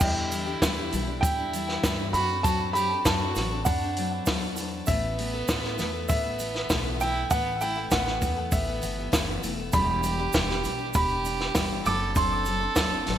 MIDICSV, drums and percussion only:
0, 0, Header, 1, 2, 480
1, 0, Start_track
1, 0, Key_signature, 1, "minor"
1, 0, Tempo, 607287
1, 6, Time_signature, 4, 2, 24, 8
1, 10417, End_track
2, 0, Start_track
2, 0, Title_t, "Drums"
2, 0, Note_on_c, 9, 82, 93
2, 7, Note_on_c, 9, 36, 117
2, 9, Note_on_c, 9, 49, 107
2, 79, Note_off_c, 9, 82, 0
2, 86, Note_off_c, 9, 36, 0
2, 88, Note_off_c, 9, 49, 0
2, 249, Note_on_c, 9, 46, 54
2, 250, Note_on_c, 9, 82, 80
2, 328, Note_off_c, 9, 46, 0
2, 329, Note_off_c, 9, 82, 0
2, 489, Note_on_c, 9, 36, 81
2, 490, Note_on_c, 9, 38, 115
2, 490, Note_on_c, 9, 46, 69
2, 496, Note_on_c, 9, 82, 94
2, 568, Note_off_c, 9, 36, 0
2, 569, Note_off_c, 9, 38, 0
2, 569, Note_off_c, 9, 46, 0
2, 575, Note_off_c, 9, 82, 0
2, 730, Note_on_c, 9, 46, 56
2, 740, Note_on_c, 9, 82, 69
2, 809, Note_off_c, 9, 46, 0
2, 819, Note_off_c, 9, 82, 0
2, 970, Note_on_c, 9, 36, 114
2, 971, Note_on_c, 9, 46, 68
2, 983, Note_on_c, 9, 82, 91
2, 1049, Note_off_c, 9, 36, 0
2, 1050, Note_off_c, 9, 46, 0
2, 1062, Note_off_c, 9, 82, 0
2, 1211, Note_on_c, 9, 46, 52
2, 1219, Note_on_c, 9, 82, 70
2, 1290, Note_off_c, 9, 46, 0
2, 1298, Note_off_c, 9, 82, 0
2, 1333, Note_on_c, 9, 38, 37
2, 1412, Note_off_c, 9, 38, 0
2, 1451, Note_on_c, 9, 36, 98
2, 1451, Note_on_c, 9, 38, 127
2, 1451, Note_on_c, 9, 46, 72
2, 1454, Note_on_c, 9, 82, 91
2, 1530, Note_off_c, 9, 36, 0
2, 1530, Note_off_c, 9, 38, 0
2, 1530, Note_off_c, 9, 46, 0
2, 1534, Note_off_c, 9, 82, 0
2, 1691, Note_on_c, 9, 46, 55
2, 1694, Note_on_c, 9, 82, 69
2, 1770, Note_off_c, 9, 46, 0
2, 1773, Note_off_c, 9, 82, 0
2, 1928, Note_on_c, 9, 46, 66
2, 1932, Note_on_c, 9, 36, 115
2, 1937, Note_on_c, 9, 82, 91
2, 2007, Note_off_c, 9, 46, 0
2, 2011, Note_off_c, 9, 36, 0
2, 2016, Note_off_c, 9, 82, 0
2, 2174, Note_on_c, 9, 46, 56
2, 2180, Note_on_c, 9, 82, 82
2, 2253, Note_off_c, 9, 46, 0
2, 2259, Note_off_c, 9, 82, 0
2, 2413, Note_on_c, 9, 82, 94
2, 2414, Note_on_c, 9, 36, 84
2, 2414, Note_on_c, 9, 38, 114
2, 2414, Note_on_c, 9, 46, 67
2, 2492, Note_off_c, 9, 82, 0
2, 2493, Note_off_c, 9, 36, 0
2, 2493, Note_off_c, 9, 38, 0
2, 2493, Note_off_c, 9, 46, 0
2, 2651, Note_on_c, 9, 82, 73
2, 2658, Note_on_c, 9, 38, 36
2, 2658, Note_on_c, 9, 46, 57
2, 2730, Note_off_c, 9, 82, 0
2, 2737, Note_off_c, 9, 38, 0
2, 2737, Note_off_c, 9, 46, 0
2, 2888, Note_on_c, 9, 82, 105
2, 2895, Note_on_c, 9, 36, 123
2, 2896, Note_on_c, 9, 46, 77
2, 2967, Note_off_c, 9, 82, 0
2, 2975, Note_off_c, 9, 36, 0
2, 2975, Note_off_c, 9, 46, 0
2, 3134, Note_on_c, 9, 46, 58
2, 3213, Note_off_c, 9, 46, 0
2, 3367, Note_on_c, 9, 82, 101
2, 3376, Note_on_c, 9, 36, 99
2, 3376, Note_on_c, 9, 38, 120
2, 3376, Note_on_c, 9, 46, 82
2, 3446, Note_off_c, 9, 82, 0
2, 3455, Note_off_c, 9, 36, 0
2, 3455, Note_off_c, 9, 38, 0
2, 3455, Note_off_c, 9, 46, 0
2, 3608, Note_on_c, 9, 82, 83
2, 3616, Note_on_c, 9, 46, 61
2, 3687, Note_off_c, 9, 82, 0
2, 3695, Note_off_c, 9, 46, 0
2, 3844, Note_on_c, 9, 82, 100
2, 3856, Note_on_c, 9, 46, 73
2, 3858, Note_on_c, 9, 36, 110
2, 3923, Note_off_c, 9, 82, 0
2, 3935, Note_off_c, 9, 46, 0
2, 3937, Note_off_c, 9, 36, 0
2, 4098, Note_on_c, 9, 46, 57
2, 4177, Note_off_c, 9, 46, 0
2, 4333, Note_on_c, 9, 82, 106
2, 4338, Note_on_c, 9, 36, 81
2, 4338, Note_on_c, 9, 38, 116
2, 4338, Note_on_c, 9, 46, 66
2, 4412, Note_off_c, 9, 82, 0
2, 4417, Note_off_c, 9, 36, 0
2, 4417, Note_off_c, 9, 38, 0
2, 4417, Note_off_c, 9, 46, 0
2, 4456, Note_on_c, 9, 38, 34
2, 4535, Note_off_c, 9, 38, 0
2, 4571, Note_on_c, 9, 82, 79
2, 4575, Note_on_c, 9, 38, 33
2, 4575, Note_on_c, 9, 46, 52
2, 4650, Note_off_c, 9, 82, 0
2, 4654, Note_off_c, 9, 38, 0
2, 4654, Note_off_c, 9, 46, 0
2, 4810, Note_on_c, 9, 82, 98
2, 4817, Note_on_c, 9, 46, 76
2, 4818, Note_on_c, 9, 36, 115
2, 4889, Note_off_c, 9, 82, 0
2, 4896, Note_off_c, 9, 46, 0
2, 4897, Note_off_c, 9, 36, 0
2, 5052, Note_on_c, 9, 82, 75
2, 5057, Note_on_c, 9, 46, 53
2, 5131, Note_off_c, 9, 82, 0
2, 5136, Note_off_c, 9, 46, 0
2, 5177, Note_on_c, 9, 38, 35
2, 5256, Note_off_c, 9, 38, 0
2, 5293, Note_on_c, 9, 82, 93
2, 5295, Note_on_c, 9, 38, 123
2, 5295, Note_on_c, 9, 46, 75
2, 5298, Note_on_c, 9, 36, 99
2, 5372, Note_off_c, 9, 82, 0
2, 5374, Note_off_c, 9, 38, 0
2, 5374, Note_off_c, 9, 46, 0
2, 5377, Note_off_c, 9, 36, 0
2, 5536, Note_on_c, 9, 82, 78
2, 5537, Note_on_c, 9, 46, 51
2, 5615, Note_off_c, 9, 82, 0
2, 5617, Note_off_c, 9, 46, 0
2, 5772, Note_on_c, 9, 46, 69
2, 5774, Note_on_c, 9, 82, 96
2, 5777, Note_on_c, 9, 36, 110
2, 5851, Note_off_c, 9, 46, 0
2, 5853, Note_off_c, 9, 82, 0
2, 5856, Note_off_c, 9, 36, 0
2, 6015, Note_on_c, 9, 82, 77
2, 6017, Note_on_c, 9, 46, 49
2, 6094, Note_off_c, 9, 82, 0
2, 6096, Note_off_c, 9, 46, 0
2, 6251, Note_on_c, 9, 82, 93
2, 6257, Note_on_c, 9, 36, 80
2, 6257, Note_on_c, 9, 38, 105
2, 6257, Note_on_c, 9, 46, 68
2, 6330, Note_off_c, 9, 82, 0
2, 6336, Note_off_c, 9, 36, 0
2, 6336, Note_off_c, 9, 38, 0
2, 6336, Note_off_c, 9, 46, 0
2, 6377, Note_on_c, 9, 38, 36
2, 6456, Note_off_c, 9, 38, 0
2, 6496, Note_on_c, 9, 36, 84
2, 6496, Note_on_c, 9, 82, 74
2, 6497, Note_on_c, 9, 46, 55
2, 6575, Note_off_c, 9, 82, 0
2, 6576, Note_off_c, 9, 36, 0
2, 6576, Note_off_c, 9, 46, 0
2, 6731, Note_on_c, 9, 82, 96
2, 6733, Note_on_c, 9, 46, 72
2, 6735, Note_on_c, 9, 36, 118
2, 6810, Note_off_c, 9, 82, 0
2, 6812, Note_off_c, 9, 46, 0
2, 6814, Note_off_c, 9, 36, 0
2, 6974, Note_on_c, 9, 82, 71
2, 6977, Note_on_c, 9, 46, 57
2, 7053, Note_off_c, 9, 82, 0
2, 7056, Note_off_c, 9, 46, 0
2, 7217, Note_on_c, 9, 36, 92
2, 7217, Note_on_c, 9, 38, 121
2, 7217, Note_on_c, 9, 46, 80
2, 7218, Note_on_c, 9, 82, 95
2, 7296, Note_off_c, 9, 36, 0
2, 7296, Note_off_c, 9, 38, 0
2, 7296, Note_off_c, 9, 46, 0
2, 7297, Note_off_c, 9, 82, 0
2, 7455, Note_on_c, 9, 82, 76
2, 7457, Note_on_c, 9, 46, 59
2, 7534, Note_off_c, 9, 82, 0
2, 7536, Note_off_c, 9, 46, 0
2, 7687, Note_on_c, 9, 82, 97
2, 7691, Note_on_c, 9, 46, 74
2, 7695, Note_on_c, 9, 36, 118
2, 7766, Note_off_c, 9, 82, 0
2, 7770, Note_off_c, 9, 46, 0
2, 7774, Note_off_c, 9, 36, 0
2, 7930, Note_on_c, 9, 82, 78
2, 7931, Note_on_c, 9, 46, 56
2, 8009, Note_off_c, 9, 82, 0
2, 8010, Note_off_c, 9, 46, 0
2, 8163, Note_on_c, 9, 82, 89
2, 8176, Note_on_c, 9, 36, 77
2, 8176, Note_on_c, 9, 38, 108
2, 8176, Note_on_c, 9, 46, 72
2, 8242, Note_off_c, 9, 82, 0
2, 8255, Note_off_c, 9, 36, 0
2, 8255, Note_off_c, 9, 38, 0
2, 8255, Note_off_c, 9, 46, 0
2, 8299, Note_on_c, 9, 38, 37
2, 8378, Note_off_c, 9, 38, 0
2, 8411, Note_on_c, 9, 82, 72
2, 8417, Note_on_c, 9, 46, 54
2, 8490, Note_off_c, 9, 82, 0
2, 8496, Note_off_c, 9, 46, 0
2, 8644, Note_on_c, 9, 82, 90
2, 8655, Note_on_c, 9, 36, 120
2, 8657, Note_on_c, 9, 46, 70
2, 8723, Note_off_c, 9, 82, 0
2, 8734, Note_off_c, 9, 36, 0
2, 8736, Note_off_c, 9, 46, 0
2, 8892, Note_on_c, 9, 82, 69
2, 8895, Note_on_c, 9, 46, 53
2, 8971, Note_off_c, 9, 82, 0
2, 8974, Note_off_c, 9, 46, 0
2, 9013, Note_on_c, 9, 38, 38
2, 9092, Note_off_c, 9, 38, 0
2, 9128, Note_on_c, 9, 38, 119
2, 9128, Note_on_c, 9, 46, 77
2, 9129, Note_on_c, 9, 82, 86
2, 9132, Note_on_c, 9, 36, 92
2, 9207, Note_off_c, 9, 38, 0
2, 9207, Note_off_c, 9, 46, 0
2, 9208, Note_off_c, 9, 82, 0
2, 9211, Note_off_c, 9, 36, 0
2, 9369, Note_on_c, 9, 82, 72
2, 9371, Note_on_c, 9, 46, 55
2, 9448, Note_off_c, 9, 82, 0
2, 9450, Note_off_c, 9, 46, 0
2, 9606, Note_on_c, 9, 82, 84
2, 9610, Note_on_c, 9, 46, 66
2, 9611, Note_on_c, 9, 36, 106
2, 9685, Note_off_c, 9, 82, 0
2, 9689, Note_off_c, 9, 46, 0
2, 9690, Note_off_c, 9, 36, 0
2, 9842, Note_on_c, 9, 82, 73
2, 9847, Note_on_c, 9, 46, 51
2, 9921, Note_off_c, 9, 82, 0
2, 9926, Note_off_c, 9, 46, 0
2, 10083, Note_on_c, 9, 82, 89
2, 10085, Note_on_c, 9, 38, 107
2, 10085, Note_on_c, 9, 46, 71
2, 10087, Note_on_c, 9, 36, 84
2, 10162, Note_off_c, 9, 82, 0
2, 10164, Note_off_c, 9, 38, 0
2, 10164, Note_off_c, 9, 46, 0
2, 10166, Note_off_c, 9, 36, 0
2, 10327, Note_on_c, 9, 38, 35
2, 10327, Note_on_c, 9, 46, 56
2, 10406, Note_off_c, 9, 38, 0
2, 10406, Note_off_c, 9, 46, 0
2, 10417, End_track
0, 0, End_of_file